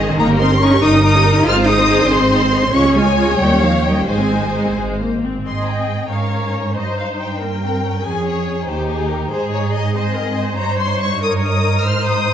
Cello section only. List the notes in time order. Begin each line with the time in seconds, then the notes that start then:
Already playing: D#3
0.18 A#3
0.39 C4
0.60 C#4
0.81 D#4
1.03 D#4
1.45 F4
1.66 D#4
2.08 C4
2.73 C#4
2.94 G#3
3.38 G3
3.61 F3
3.85 G3
4.08 G#3
5.46 G#2
6.10 G#2
6.75 G2
8.06 F2
8.69 D#2
9.32 G#2
10.58 G2
11.84 G#2